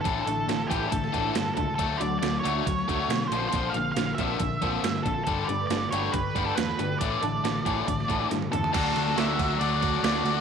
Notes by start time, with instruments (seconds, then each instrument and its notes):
Already playing: string machine D4 A4
0.01 overdriven electric guitar A2 D3 E3, lead electric guitar A4, closed hi-hat
0.05 picked electric bass A1, string machine E5 A5, kick
0.22 lead electric guitar A4
0.27 picked electric bass A1, overdriven electric guitar A2 D3, clean electric guitar A3 D4 E4 A4, closed hi-hat
0.47 picked electric bass A1, overdriven electric guitar A2 D3, snare, closed hi-hat
0.67 picked electric bass A1, overdriven electric guitar A2 D3 E3, clean electric guitar E4 A4, lead electric guitar G4, kick
0.71 clean electric guitar A3 D4, closed hi-hat
0.89 picked electric bass A1, overdriven electric guitar A2 D3, lead electric guitar A4, kick, closed hi-hat
1.04 snare
1.12 picked electric bass A1, overdriven electric guitar A2 D3 E3, clean electric guitar A3 D4 E4 A4, kick, closed hi-hat
1.35 picked electric bass G2, overdriven electric guitar A2 D3, snare, closed hi-hat
1.55 picked electric bass C#2, overdriven electric guitar A2 D3, clean electric guitar A3 D4 E4 A4, lead electric guitar A4, kick, closed hi-hat
1.75 picked electric bass D2, overdriven electric guitar D3 F#3, lead electric guitar A4, kick, closed hi-hat
1.80 overdriven electric guitar A3, string machine F#5
1.97 picked electric bass D2, clean electric guitar D3 A3 D4 F#4, overdriven electric guitar D3, lead electric guitar D5, closed hi-hat
2.02 overdriven electric guitar F#3
2.19 picked electric bass D2, overdriven electric guitar D3 F#3, lead electric guitar D5, snare, closed hi-hat
2.39 clean electric guitar F#4, lead electric guitar C#5
2.44 picked electric bass D2, overdriven electric guitar D3 F#3 A3, clean electric guitar D3 A3 D4, closed hi-hat
2.66 picked electric bass D2, overdriven electric guitar D3 F#3, kick, closed hi-hat
2.79 snare
2.87 picked electric bass D2, overdriven electric guitar D3 F#3 A3, clean electric guitar D3 A3 D4 F#4, kick, closed hi-hat
3.08 picked electric bass B2, overdriven electric guitar D3 F#3, snare, closed hi-hat
3.28 picked electric bass A#1, clean electric guitar C4 F4, lead electric guitar C5
3.32 overdriven electric guitar A#2 D3 F3, clean electric guitar D3 A#3, string machine F4 A#4 C6, closed hi-hat
3.49 lead electric guitar C5, closed hi-hat
3.53 picked electric bass A#1, overdriven electric guitar A#2 D3 F3, kick
3.70 lead electric guitar F5
3.74 picked electric bass A#1, overdriven electric guitar A#2 D3, clean electric guitar D3 A#3 C4 F4, closed hi-hat
3.92 lead electric guitar F5
3.96 picked electric bass A#1, overdriven electric guitar A#2 D3, snare, closed hi-hat
4.15 picked electric bass A#1, clean electric guitar A#3 C4 F4, lead electric guitar E5, kick, closed hi-hat
4.19 overdriven electric guitar A#2 D3 F3, clean electric guitar D3
4.40 picked electric bass A#1, overdriven electric guitar A#2 D3, kick, closed hi-hat
4.61 picked electric bass A#1, overdriven electric guitar A#2 D3 F3, clean electric guitar D3 A#3 C4 F4, kick, closed hi-hat
4.83 picked electric bass G2, overdriven electric guitar A#2 D3, snare, closed hi-hat
5.03 picked electric bass A#1, overdriven electric guitar A#2 D3, clean electric guitar D3 A#3 C4 F4, lead electric guitar A4, kick, closed hi-hat
5.24 picked electric bass G1, overdriven electric guitar G2 D3 G3, lead electric guitar A4, string machine A4 D5 G5 B5, kick, closed hi-hat
5.44 clean electric guitar G4 B4, lead electric guitar D5
5.49 picked electric bass G1, overdriven electric guitar G2 D3, clean electric guitar A3 D4, closed hi-hat
5.67 picked electric bass G1, overdriven electric guitar G2 D3, lead electric guitar D5, snare, closed hi-hat
5.91 picked electric bass G1, overdriven electric guitar G2 D3 G3, clean electric guitar A3 D4 G4 B4, lead electric guitar C#5, closed hi-hat
6.12 picked electric bass G1, overdriven electric guitar G2 D3, lead electric guitar B4, kick, closed hi-hat
6.34 picked electric bass G1, overdriven electric guitar G2 D3 G3, clean electric guitar A3 D4 G4 B4, kick, closed hi-hat
6.45 lead electric guitar A4
6.55 picked electric bass E2, overdriven electric guitar G2 D3, lead electric guitar B4, snare, closed hi-hat
6.78 picked electric bass G1, overdriven electric guitar G2 D3, clean electric guitar A3 D4 G4 B4, closed hi-hat
6.99 picked electric bass A1, overdriven electric guitar A2 D3 E3, lead electric guitar D5, kick, closed hi-hat
7.03 string machine E5 D6
7.21 picked electric bass A1, overdriven electric guitar A2 D3, clean electric guitar A3 D4 E4 A4, closed hi-hat
7.44 picked electric bass A1, overdriven electric guitar A2 D3, snare, closed hi-hat
7.65 picked electric bass A1, overdriven electric guitar A2 D3 E3, clean electric guitar A3 D4 E4 A4, kick, closed hi-hat
7.87 picked electric bass A1, overdriven electric guitar A2 D3, kick, closed hi-hat
8.00 snare
8.08 picked electric bass A1, overdriven electric guitar A2 D3 E3, clean electric guitar A3 D4 E4 A4, kick, closed hi-hat
8.31 picked electric bass G2, overdriven electric guitar A2 D3, snare, closed hi-hat
8.42 high tom
8.52 picked electric bass E2, overdriven electric guitar A2 D3, clean electric guitar A3 D4 E4 A4, lead electric guitar A4, closed hi-hat, mid tom
8.64 floor tom
8.73 picked electric bass D2, clean electric guitar D3 A3 D4 F#4, overdriven electric guitar D3 F#3 A3 D4 F#4, lead electric guitar A4, kick, crash, ride
8.96 picked electric bass D2, ride
9.08 snare
9.16 picked electric bass D2, clean electric guitar D3 A3 D4 F#4, overdriven electric guitar F#3 A3 D4 F#4, lead electric guitar E5, snare, ride
9.39 picked electric bass D2, kick, ride
9.59 picked electric bass D2, overdriven electric guitar D3 F#3 A3 D4 F#4, lead electric guitar D5, ride
9.82 clean electric guitar A3 D4 F#4, overdriven electric guitar A3 D4 F#4, kick, ride
10.03 picked electric bass D2, clean electric guitar D3 A3 D4 F#4, overdriven electric guitar F#3 A3 D4 F#4, lead electric guitar D5, snare, ride
10.24 picked electric bass D2, overdriven electric guitar A3 D4 F#4, clean electric guitar A3 D4 F#4, ride